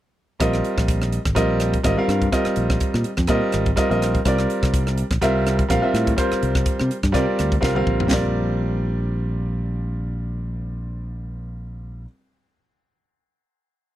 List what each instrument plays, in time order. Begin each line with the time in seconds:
0.40 fretless electric bass A#1, grand piano G3 C4 F4 A#4 D#5, kick, cross-stick, closed hi-hat
0.53 cross-stick, closed hi-hat
0.64 closed hi-hat
0.78 fretless electric bass A#1, kick, cross-stick, closed hi-hat
0.88 kick, closed hi-hat
1.01 cross-stick, closed hi-hat
1.12 closed hi-hat
1.25 fretless electric bass G#1, kick, cross-stick, closed hi-hat
1.35 fretless electric bass A#1, grand piano G3 C4 F4 A#4 D#5, kick, cross-stick, closed hi-hat
1.60 cross-stick, closed hi-hat
1.73 kick, closed hi-hat
1.83 fretless electric bass G#1, grand piano G3 C4 F4 A#4 D#5, kick, cross-stick, closed hi-hat
1.97 grand piano G3 C4 F4 A#4 F5
2.08 fretless electric bass G2, cross-stick, closed hi-hat
2.22 kick, closed hi-hat
2.32 grand piano G3 C4 F4 A#4 D#5, kick, cross-stick, closed hi-hat
2.45 muted fretless electric bass stroke, cross-stick, closed hi-hat
2.56 fretless electric bass A#1, closed hi-hat
2.70 kick, cross-stick, closed hi-hat
2.80 kick, closed hi-hat
2.94 fretless electric bass A#2, cross-stick
3.04 closed hi-hat
3.17 fretless electric bass F2, kick, cross-stick, closed hi-hat
3.27 fretless electric bass A#2, grand piano G3 C4 F4 A#4 D#5, kick, cross-stick, closed hi-hat
3.52 fretless electric bass G#1, cross-stick, closed hi-hat
3.66 kick, closed hi-hat
3.76 grand piano G3 C4 F4 A#4 D#5, kick, cross-stick, closed hi-hat
3.89 fretless electric bass A#1, grand piano G3 C4 F4 A#4 D#5, closed hi-hat
4.02 cross-stick, closed hi-hat
4.14 kick, closed hi-hat
4.25 fretless electric bass C2, grand piano G3 C4 F4 A#4 D5, kick, cross-stick, closed hi-hat
4.38 cross-stick, closed hi-hat
4.50 closed hi-hat
4.63 fretless electric bass C2, kick, cross-stick, closed hi-hat
4.74 kick, closed hi-hat
4.87 cross-stick, closed hi-hat
4.98 closed hi-hat
5.11 fretless electric bass A#1, kick, cross-stick, closed hi-hat
5.21 fretless electric bass C2, grand piano G3 C4 F4 A#4 E5, kick, cross-stick, closed hi-hat
5.47 cross-stick, closed hi-hat
5.59 kick, closed hi-hat
5.69 fretless electric bass A#1, grand piano G3 C4 F4 A#4 F5, kick, cross-stick, closed hi-hat
5.82 grand piano G3 C4 F4 A#4 E5
5.94 fretless electric bass A2, cross-stick, closed hi-hat
6.07 kick, closed hi-hat
6.16 grand piano G3 C4 F4 A#4 C5, kick, cross-stick, closed hi-hat
6.32 muted fretless electric bass stroke, cross-stick, closed hi-hat
6.43 fretless electric bass C2, closed hi-hat
6.55 kick, cross-stick, closed hi-hat
6.66 kick, closed hi-hat
6.80 fretless electric bass C3, cross-stick
6.91 closed hi-hat
7.03 fretless electric bass G2, kick, cross-stick, closed hi-hat
7.12 fretless electric bass C3, grand piano G3 C4 F4 A#4 D5, kick, cross-stick, closed hi-hat
7.39 fretless electric bass D2, cross-stick, closed hi-hat
7.52 kick, closed hi-hat
7.61 fretless electric bass C2, grand piano G3 C4 F4 A#4 F5, kick, snare
7.75 grand piano G3 C4 F4 A#4 F5, mid tom
7.87 fretless electric bass A#1, kick
8.00 floor tom
8.07 grand piano G3 C4 F4
8.11 fretless electric bass A#1, grand piano A#4 D5, kick, snare, ride bell